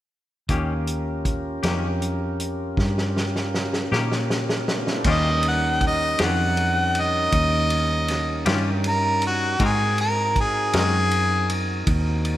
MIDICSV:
0, 0, Header, 1, 6, 480
1, 0, Start_track
1, 0, Tempo, 758534
1, 311, Time_signature, 12, 3, 24, 8
1, 7829, End_track
2, 0, Start_track
2, 0, Title_t, "Harmonica"
2, 0, Program_c, 0, 22
2, 3229, Note_on_c, 0, 75, 86
2, 3447, Note_off_c, 0, 75, 0
2, 3470, Note_on_c, 0, 78, 78
2, 3687, Note_off_c, 0, 78, 0
2, 3715, Note_on_c, 0, 75, 94
2, 3930, Note_off_c, 0, 75, 0
2, 3944, Note_on_c, 0, 78, 84
2, 4438, Note_on_c, 0, 75, 88
2, 4447, Note_off_c, 0, 78, 0
2, 5352, Note_off_c, 0, 75, 0
2, 5623, Note_on_c, 0, 70, 89
2, 5843, Note_off_c, 0, 70, 0
2, 5866, Note_on_c, 0, 66, 79
2, 6084, Note_off_c, 0, 66, 0
2, 6105, Note_on_c, 0, 68, 73
2, 6324, Note_off_c, 0, 68, 0
2, 6334, Note_on_c, 0, 70, 82
2, 6558, Note_off_c, 0, 70, 0
2, 6586, Note_on_c, 0, 68, 75
2, 6804, Note_off_c, 0, 68, 0
2, 6825, Note_on_c, 0, 68, 90
2, 7276, Note_off_c, 0, 68, 0
2, 7829, End_track
3, 0, Start_track
3, 0, Title_t, "Tonewheel organ"
3, 0, Program_c, 1, 16
3, 312, Note_on_c, 1, 67, 46
3, 313, Note_on_c, 1, 61, 49
3, 313, Note_on_c, 1, 70, 44
3, 314, Note_on_c, 1, 65, 49
3, 3004, Note_on_c, 1, 57, 57
3, 3021, Note_on_c, 1, 59, 46
3, 3040, Note_on_c, 1, 60, 49
3, 3054, Note_on_c, 1, 62, 52
3, 3075, Note_on_c, 1, 64, 49
3, 3086, Note_off_c, 1, 65, 0
3, 3094, Note_on_c, 1, 65, 56
3, 3102, Note_off_c, 1, 67, 0
3, 3110, Note_on_c, 1, 67, 53
3, 3130, Note_on_c, 1, 69, 56
3, 3145, Note_on_c, 1, 71, 49
3, 3158, Note_off_c, 1, 57, 0
3, 3167, Note_off_c, 1, 59, 0
3, 3168, Note_on_c, 1, 72, 53
3, 3173, Note_off_c, 1, 61, 0
3, 3173, Note_off_c, 1, 70, 0
3, 3176, Note_off_c, 1, 60, 0
3, 3180, Note_on_c, 1, 74, 56
3, 3183, Note_off_c, 1, 62, 0
3, 3194, Note_off_c, 1, 64, 0
3, 3196, Note_on_c, 1, 70, 55
3, 3199, Note_on_c, 1, 55, 54
3, 3200, Note_on_c, 1, 63, 54
3, 3201, Note_on_c, 1, 61, 58
3, 3204, Note_off_c, 1, 65, 0
3, 3211, Note_off_c, 1, 67, 0
3, 3221, Note_off_c, 1, 69, 0
3, 3229, Note_off_c, 1, 71, 0
3, 3241, Note_off_c, 1, 72, 0
3, 3246, Note_off_c, 1, 74, 0
3, 6051, Note_off_c, 1, 70, 0
3, 6052, Note_off_c, 1, 55, 0
3, 6053, Note_off_c, 1, 61, 0
3, 6053, Note_off_c, 1, 63, 0
3, 6082, Note_on_c, 1, 66, 57
3, 6082, Note_on_c, 1, 70, 56
3, 6087, Note_on_c, 1, 63, 60
3, 6088, Note_on_c, 1, 60, 58
3, 7829, Note_off_c, 1, 60, 0
3, 7829, Note_off_c, 1, 63, 0
3, 7829, Note_off_c, 1, 66, 0
3, 7829, Note_off_c, 1, 70, 0
3, 7829, End_track
4, 0, Start_track
4, 0, Title_t, "Clean electric guitar"
4, 0, Program_c, 2, 27
4, 309, Note_on_c, 2, 51, 52
4, 314, Note_on_c, 2, 58, 52
4, 318, Note_on_c, 2, 61, 56
4, 321, Note_on_c, 2, 67, 57
4, 455, Note_off_c, 2, 51, 0
4, 457, Note_off_c, 2, 58, 0
4, 459, Note_off_c, 2, 61, 0
4, 461, Note_off_c, 2, 67, 0
4, 1030, Note_on_c, 2, 67, 59
4, 1037, Note_on_c, 2, 61, 53
4, 1041, Note_on_c, 2, 58, 53
4, 1045, Note_on_c, 2, 51, 49
4, 1176, Note_off_c, 2, 67, 0
4, 1180, Note_off_c, 2, 61, 0
4, 1182, Note_off_c, 2, 58, 0
4, 1184, Note_off_c, 2, 51, 0
4, 2480, Note_on_c, 2, 67, 64
4, 2486, Note_on_c, 2, 61, 52
4, 2489, Note_on_c, 2, 58, 52
4, 2492, Note_on_c, 2, 51, 55
4, 2623, Note_off_c, 2, 67, 0
4, 2626, Note_off_c, 2, 61, 0
4, 2627, Note_off_c, 2, 58, 0
4, 2629, Note_off_c, 2, 51, 0
4, 3202, Note_on_c, 2, 51, 51
4, 3205, Note_on_c, 2, 61, 64
4, 3212, Note_on_c, 2, 65, 63
4, 3214, Note_on_c, 2, 67, 67
4, 3344, Note_off_c, 2, 51, 0
4, 3346, Note_off_c, 2, 61, 0
4, 3349, Note_off_c, 2, 65, 0
4, 3350, Note_off_c, 2, 67, 0
4, 3916, Note_on_c, 2, 67, 64
4, 3921, Note_on_c, 2, 65, 56
4, 3923, Note_on_c, 2, 61, 57
4, 3929, Note_on_c, 2, 51, 50
4, 4061, Note_off_c, 2, 67, 0
4, 4064, Note_off_c, 2, 61, 0
4, 4064, Note_off_c, 2, 65, 0
4, 4068, Note_off_c, 2, 51, 0
4, 5352, Note_on_c, 2, 67, 70
4, 5356, Note_on_c, 2, 65, 72
4, 5358, Note_on_c, 2, 61, 63
4, 5362, Note_on_c, 2, 51, 60
4, 5498, Note_off_c, 2, 67, 0
4, 5500, Note_off_c, 2, 65, 0
4, 5502, Note_off_c, 2, 61, 0
4, 5503, Note_off_c, 2, 51, 0
4, 6071, Note_on_c, 2, 56, 62
4, 6077, Note_on_c, 2, 60, 60
4, 6079, Note_on_c, 2, 66, 64
4, 6083, Note_on_c, 2, 70, 62
4, 6218, Note_off_c, 2, 56, 0
4, 6220, Note_off_c, 2, 60, 0
4, 6222, Note_off_c, 2, 66, 0
4, 6224, Note_off_c, 2, 70, 0
4, 6795, Note_on_c, 2, 70, 61
4, 6802, Note_on_c, 2, 66, 61
4, 6808, Note_on_c, 2, 56, 54
4, 6808, Note_on_c, 2, 60, 54
4, 6939, Note_off_c, 2, 70, 0
4, 6943, Note_off_c, 2, 66, 0
4, 6945, Note_off_c, 2, 60, 0
4, 6946, Note_off_c, 2, 56, 0
4, 7829, End_track
5, 0, Start_track
5, 0, Title_t, "Fingered electric bass"
5, 0, Program_c, 3, 33
5, 311, Note_on_c, 3, 39, 63
5, 1012, Note_off_c, 3, 39, 0
5, 1034, Note_on_c, 3, 41, 57
5, 1734, Note_off_c, 3, 41, 0
5, 1757, Note_on_c, 3, 43, 70
5, 2456, Note_off_c, 3, 43, 0
5, 2478, Note_on_c, 3, 46, 67
5, 3177, Note_off_c, 3, 46, 0
5, 3193, Note_on_c, 3, 39, 79
5, 3894, Note_off_c, 3, 39, 0
5, 3921, Note_on_c, 3, 41, 70
5, 4618, Note_off_c, 3, 41, 0
5, 4635, Note_on_c, 3, 39, 77
5, 5334, Note_off_c, 3, 39, 0
5, 5356, Note_on_c, 3, 43, 76
5, 6054, Note_off_c, 3, 43, 0
5, 6074, Note_on_c, 3, 44, 80
5, 6773, Note_off_c, 3, 44, 0
5, 6796, Note_on_c, 3, 42, 80
5, 7493, Note_off_c, 3, 42, 0
5, 7511, Note_on_c, 3, 39, 76
5, 7829, Note_off_c, 3, 39, 0
5, 7829, End_track
6, 0, Start_track
6, 0, Title_t, "Drums"
6, 308, Note_on_c, 9, 42, 59
6, 310, Note_on_c, 9, 36, 72
6, 371, Note_off_c, 9, 42, 0
6, 373, Note_off_c, 9, 36, 0
6, 551, Note_on_c, 9, 42, 42
6, 615, Note_off_c, 9, 42, 0
6, 792, Note_on_c, 9, 36, 57
6, 792, Note_on_c, 9, 42, 48
6, 855, Note_off_c, 9, 36, 0
6, 855, Note_off_c, 9, 42, 0
6, 1033, Note_on_c, 9, 42, 63
6, 1042, Note_on_c, 9, 38, 78
6, 1096, Note_off_c, 9, 42, 0
6, 1105, Note_off_c, 9, 38, 0
6, 1277, Note_on_c, 9, 42, 46
6, 1340, Note_off_c, 9, 42, 0
6, 1516, Note_on_c, 9, 42, 52
6, 1580, Note_off_c, 9, 42, 0
6, 1755, Note_on_c, 9, 36, 67
6, 1764, Note_on_c, 9, 38, 43
6, 1818, Note_off_c, 9, 36, 0
6, 1828, Note_off_c, 9, 38, 0
6, 1885, Note_on_c, 9, 38, 39
6, 1949, Note_off_c, 9, 38, 0
6, 2004, Note_on_c, 9, 38, 46
6, 2068, Note_off_c, 9, 38, 0
6, 2125, Note_on_c, 9, 38, 44
6, 2188, Note_off_c, 9, 38, 0
6, 2243, Note_on_c, 9, 38, 53
6, 2306, Note_off_c, 9, 38, 0
6, 2362, Note_on_c, 9, 38, 42
6, 2426, Note_off_c, 9, 38, 0
6, 2484, Note_on_c, 9, 38, 58
6, 2547, Note_off_c, 9, 38, 0
6, 2605, Note_on_c, 9, 38, 53
6, 2668, Note_off_c, 9, 38, 0
6, 2723, Note_on_c, 9, 38, 67
6, 2786, Note_off_c, 9, 38, 0
6, 2843, Note_on_c, 9, 38, 57
6, 2906, Note_off_c, 9, 38, 0
6, 2962, Note_on_c, 9, 38, 65
6, 3025, Note_off_c, 9, 38, 0
6, 3082, Note_on_c, 9, 38, 57
6, 3146, Note_off_c, 9, 38, 0
6, 3191, Note_on_c, 9, 49, 86
6, 3194, Note_on_c, 9, 36, 100
6, 3254, Note_off_c, 9, 49, 0
6, 3258, Note_off_c, 9, 36, 0
6, 3434, Note_on_c, 9, 51, 52
6, 3497, Note_off_c, 9, 51, 0
6, 3676, Note_on_c, 9, 36, 58
6, 3676, Note_on_c, 9, 51, 52
6, 3739, Note_off_c, 9, 36, 0
6, 3739, Note_off_c, 9, 51, 0
6, 3914, Note_on_c, 9, 51, 74
6, 3923, Note_on_c, 9, 38, 98
6, 3977, Note_off_c, 9, 51, 0
6, 3986, Note_off_c, 9, 38, 0
6, 4158, Note_on_c, 9, 51, 50
6, 4221, Note_off_c, 9, 51, 0
6, 4396, Note_on_c, 9, 51, 60
6, 4460, Note_off_c, 9, 51, 0
6, 4634, Note_on_c, 9, 51, 73
6, 4636, Note_on_c, 9, 36, 76
6, 4697, Note_off_c, 9, 51, 0
6, 4699, Note_off_c, 9, 36, 0
6, 4873, Note_on_c, 9, 51, 60
6, 4937, Note_off_c, 9, 51, 0
6, 5114, Note_on_c, 9, 51, 58
6, 5123, Note_on_c, 9, 38, 31
6, 5178, Note_off_c, 9, 51, 0
6, 5186, Note_off_c, 9, 38, 0
6, 5352, Note_on_c, 9, 51, 68
6, 5361, Note_on_c, 9, 38, 101
6, 5415, Note_off_c, 9, 51, 0
6, 5424, Note_off_c, 9, 38, 0
6, 5594, Note_on_c, 9, 51, 63
6, 5657, Note_off_c, 9, 51, 0
6, 5832, Note_on_c, 9, 51, 54
6, 5895, Note_off_c, 9, 51, 0
6, 6072, Note_on_c, 9, 51, 75
6, 6074, Note_on_c, 9, 36, 100
6, 6135, Note_off_c, 9, 51, 0
6, 6138, Note_off_c, 9, 36, 0
6, 6315, Note_on_c, 9, 51, 54
6, 6378, Note_off_c, 9, 51, 0
6, 6554, Note_on_c, 9, 36, 62
6, 6554, Note_on_c, 9, 51, 50
6, 6618, Note_off_c, 9, 36, 0
6, 6618, Note_off_c, 9, 51, 0
6, 6792, Note_on_c, 9, 51, 73
6, 6801, Note_on_c, 9, 38, 94
6, 6855, Note_off_c, 9, 51, 0
6, 6864, Note_off_c, 9, 38, 0
6, 7032, Note_on_c, 9, 51, 57
6, 7096, Note_off_c, 9, 51, 0
6, 7274, Note_on_c, 9, 51, 61
6, 7337, Note_off_c, 9, 51, 0
6, 7510, Note_on_c, 9, 51, 71
6, 7511, Note_on_c, 9, 36, 84
6, 7573, Note_off_c, 9, 51, 0
6, 7575, Note_off_c, 9, 36, 0
6, 7749, Note_on_c, 9, 51, 48
6, 7813, Note_off_c, 9, 51, 0
6, 7829, End_track
0, 0, End_of_file